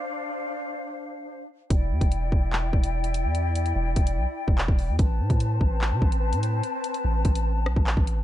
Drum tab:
HH |----------------|x--xx------x-xx-|x-xx--xx------o-|x--xx------x-xx-|
CP |----------------|--------x-------|------------x---|--------x-------|
SD |----------------|----------------|----------------|----------------|
BD |----------------|o--o--o---o-----|------o----o-o--|o--o--o---o-----|

HH |x-xx--xx------x-|
CP |------------x---|
SD |----------r-----|
BD |------o----o-o--|